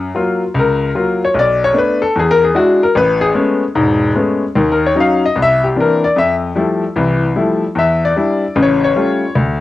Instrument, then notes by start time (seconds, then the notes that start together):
grand piano
0.15 F#3 A#3 F4
0.54 C#2
0.59 A#4
0.95 F#3 A#3 F4
1.25 C#5
1.34 B1
1.39 D5
1.64 C#5
1.73 A3 B3 D4
1.78 B4
2.02 A4
2.16 E2 G#4
2.31 A#4
2.44 G#4
2.55 G#3 D4 E4 F#4
2.83 A#4
2.95 A1 B4
3.21 G#4
3.34 G#3 A3 B3 C#4
3.75 E1 G#2
4.15 G#3 A3 B3 C#4
4.56 D#2 D#3
4.72 A#4
4.86 C#5
4.96 F#3 C#4 D#4
5.00 F5
5.26 D#5
5.36 C2
5.43 E5
5.64 G4
5.76 E3 A#3 C4 D4
5.80 A#4
6.04 D5
6.16 F2 E5
6.55 F3 G3 A3 E4
6.96 C2 E3
7.36 F3 G3 A3 E4
7.75 E2 E5
8.05 D5
8.16 G3 D4 E4
8.56 A1 C#3
8.63 C#5
8.84 C#5
8.96 G3 A3 C#4 F4
9.35 D2